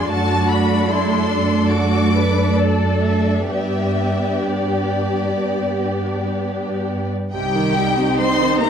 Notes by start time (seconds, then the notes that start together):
Already playing: F2 D4 G#4 D5
0.09 F#2 A3 F#4 A4 A5
0.50 B5
0.91 E4 C6
1.31 D4
1.70 F#4 D6
2.15 B4
2.57 A4 D5
3.02 E5
3.50 G2 B3 D4 G4 D5 E5
4.48 D5
7.33 C2 C3 G3 D#4 G4 G5
7.54 D#3
7.76 G3
7.99 C4
8.19 G3 C4 C5 C6
8.40 D#3
8.60 C3 A#3 A#4 A#5